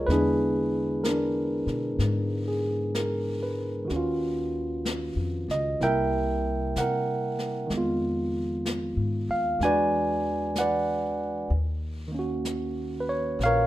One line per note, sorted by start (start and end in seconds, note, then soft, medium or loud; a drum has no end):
0.00 0.11 F4 soft
0.00 0.11 G#4 medium
0.00 0.11 A#4 medium
0.00 0.11 C#5 medium
0.00 0.11 D#5 medium
0.07 1.62 E2 medium
0.07 3.90 D3 soft
0.07 3.90 G#3 soft
0.07 3.90 B3 soft
0.07 3.91 E4 soft
0.07 1.06 B4 medium
0.07 brush sweep soft
0.07 snare soft
0.12 1.07 D4 soft
0.12 1.97 G#4 soft
1.04 2.58 A#4 soft
1.04 brush sweep soft
1.04 snare soft
1.04 hi-hat pedal soft
1.08 2.93 D4 soft
1.67 1.97 B2 medium
1.67 snare soft
1.99 3.86 G#2 medium
1.99 brush sweep soft
1.99 snare soft
2.48 3.15 G#4 soft
2.95 3.70 A#4 soft
2.95 brush sweep soft
2.95 snare soft
2.95 hi-hat pedal soft
3.43 4.10 B4 soft
3.85 5.78 D#3 soft
3.85 5.80 F#4 soft
3.90 5.13 D#2 medium
3.90 5.82 C#4 soft
3.90 brush sweep soft
3.90 snare soft
3.96 5.84 F4 medium
4.85 brush sweep soft
4.85 snare soft
4.85 hi-hat pedal soft
5.16 5.46 F2 soft
5.48 5.78 C#2 medium
5.48 5.80 D#5 medium
5.48 snare soft
5.80 6.72 C2 medium
5.80 7.71 C3 soft
5.80 7.71 G3 soft
5.80 7.71 A#3 soft
5.80 7.71 E4 soft
5.80 6.79 A#4 medium
5.80 7.68 E5 medium
5.80 6.73 G5 medium
5.80 brush sweep soft
5.80 snare soft
6.76 7.67 C3 medium
6.76 7.68 F#5 medium
6.76 brush sweep soft
6.76 snare soft
6.76 hi-hat pedal soft
6.80 7.69 A#4 soft
7.39 snare soft
7.67 8.93 F2 medium
7.67 9.59 D#3 soft
7.67 9.59 G#3 soft
7.67 brush sweep soft
7.67 snare soft
7.74 9.62 B3 soft
7.74 9.64 F4 medium
8.66 brush sweep soft
8.66 snare soft
8.66 hi-hat pedal soft
8.97 9.27 G#2 medium
9.29 9.58 D#2 medium
9.29 9.60 F5 medium
9.59 11.46 E2 medium
9.59 11.50 E3 soft
9.59 11.50 G#3 soft
9.59 11.51 D4 soft
9.59 10.60 G#5 medium
9.59 brush sweep soft
9.59 snare soft
9.64 11.52 F#4 soft
9.64 10.59 B4 medium
9.64 10.59 D5 medium
10.55 11.48 F#5 medium
10.55 brush sweep soft
10.55 snare soft
10.55 hi-hat pedal soft
10.60 11.49 B4 soft
10.60 11.49 D5 soft
11.50 13.36 D#2 medium
11.50 brush sweep soft
12.08 13.67 D#3 soft
12.08 13.67 A#3 soft
12.15 13.67 C#4 soft
12.19 13.67 F#4 soft
12.45 brush sweep soft
12.45 snare soft
12.45 hi-hat pedal soft
13.00 13.09 B4 medium
13.09 13.39 C#5 medium
13.39 13.67 A#1 medium
13.39 brush sweep soft
13.39 snare soft
13.44 13.67 A#4 medium
13.44 13.67 C#5 medium
13.44 13.67 F5 medium